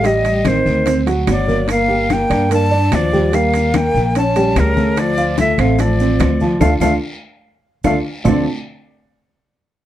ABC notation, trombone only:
X:1
M:4/4
L:1/8
Q:1/4=146
K:Dm
V:1 name="Trombone"
G,2 _E,3 z ^F,2 | B,2 B,2 D2 F,2 | B,2 B,2 _D2 _D,2 | F,2 A, A, F,4 |
A, A, z4 A, z | F, z6 z |]